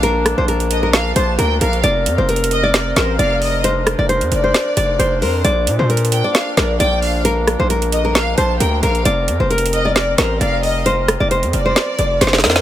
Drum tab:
HH |x-----------x-----------x-----x-----x-----------x-----------x-----------x-----------x-----x-----|x-----------x-----------x---x---x---x-----------x-----------x-----------x-----------o-----------|x-----------x-----------x-----x-----x-----------x-----------x-----------x-----------o-----------|x-----------x-----------x---x---x---x-----------x-----------x-----------x-----------o-----------|
SD |------------r-----------------------------------o-----------------------------------------------|------------------------------------------------o-----------o-----------------------------------|------------r-----------------------------------o-----------------------------------------------|------------------------------------------------o-----------o-----------------------------------|

HH |x-----------x-----------x-----x-----x-----------x-----------x-----------x-----------x-----x-----|x-----------x-----------x---x---x---x-----------x-----------x-----------x-----------o-----------|x-----------x-----------x-----x-----x-----------x-----------x-----------x-----------o-----------|
SD |------------r-----------------------------------o-----------------------------------------------|------------------------------------------------o-----------o-----------------------------------|------------r-----------------------------------o-----------------------o--o--o--o--o--o--o-----|